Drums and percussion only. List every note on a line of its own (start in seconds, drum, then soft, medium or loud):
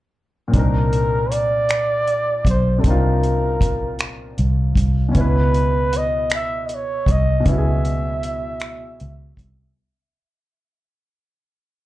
0.54 kick loud
0.54 closed hi-hat medium
0.93 closed hi-hat soft
1.32 closed hi-hat medium
1.69 finger snap medium
1.69 closed hi-hat medium
2.07 closed hi-hat soft
2.45 kick medium
2.45 closed hi-hat medium
2.84 kick medium
2.84 closed hi-hat medium
3.23 closed hi-hat soft
3.61 kick medium
3.61 closed hi-hat medium
3.99 finger snap medium
3.99 closed hi-hat soft
4.38 closed hi-hat soft
4.75 kick medium
4.75 closed hi-hat medium
5.15 kick loud
5.15 closed hi-hat medium
5.54 closed hi-hat soft
5.93 closed hi-hat medium
6.30 finger snap loud
6.30 closed hi-hat medium
6.69 closed hi-hat soft
7.06 kick medium
7.06 closed hi-hat medium
7.46 kick medium
7.46 closed hi-hat medium
7.85 closed hi-hat soft
8.23 closed hi-hat medium
8.60 finger snap medium
8.60 closed hi-hat soft
9.00 closed hi-hat soft
9.37 kick medium
9.37 closed hi-hat medium